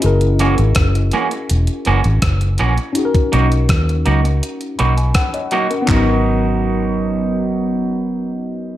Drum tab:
HH |xxxxxxxxxxxxxxxx|xxxxxxxxxxxxxxxx|----------------|
CP |----------------|----------------|x---------------|
SD |----r-------r---|----r-------r---|----------------|
BD |----o-------o---|-o--o-------o---|o---------------|